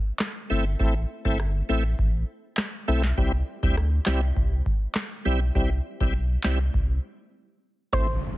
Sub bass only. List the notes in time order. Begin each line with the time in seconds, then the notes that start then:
0.50 G1
0.80 A1
1.25 G1
1.69 A1
1.99 A1
2.88 B1
3.18 C2
3.63 D2
4.07 C2
4.37 C2
5.26 B1
5.55 C2
6.01 B1
6.44 C2
6.74 C2
7.93 A1